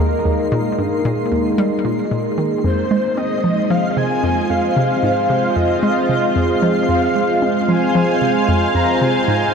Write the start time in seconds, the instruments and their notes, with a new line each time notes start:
Already playing: analog synth pad G#3 A#3 D#4 A#4 D#5, synth texture C6
0.00 synth arpeggio sound D#2
0.25 synth arpeggio sound D#2
0.52 synth arpeggio sound A#2
0.78 synth arpeggio sound G2
1.05 synth arpeggio sound A#2
1.32 synth arpeggio sound D#2
1.58 synth arpeggio sound G3
1.85 synth arpeggio sound A#2
2.11 synth arpeggio sound A#2
2.38 synth arpeggio sound D#3
2.64 synth arpeggio sound F2, analog synth pad G#3, soft synth lead C5, synth texture C5
2.91 synth arpeggio sound G#3, analog synth pad C5
3.05 analog synth pad C4
3.17 synth arpeggio sound C4, soft synth lead D#5
3.44 synth arpeggio sound F3
3.50 analog synth pad F4
3.70 synth arpeggio sound F3, soft synth lead F5
3.97 synth arpeggio sound C3, soft synth lead G#5
4.24 synth arpeggio sound F2
4.30 analog synth pad F5
4.50 synth arpeggio sound F2, soft synth lead F5
4.77 synth arpeggio sound C3
5.03 synth arpeggio sound G#2, soft synth lead F5
5.30 synth arpeggio sound C3
5.56 synth arpeggio sound F2, soft synth lead D#5
5.83 synth arpeggio sound G#3
6.09 synth arpeggio sound C3
6.36 synth arpeggio sound F2
6.62 synth arpeggio sound F3
6.89 synth arpeggio sound F2, soft synth lead F5
7.16 synth arpeggio sound G#3
7.23 analog synth pad F5
7.42 synth arpeggio sound C4
7.69 synth arpeggio sound F3, soft synth lead G#5
7.95 synth arpeggio sound F3
8.22 synth arpeggio sound C3
8.48 synth arpeggio sound F2
8.75 synth arpeggio sound F2, soft synth lead A#5
9.01 synth arpeggio sound C3, soft synth lead G#5
9.28 synth arpeggio sound G#2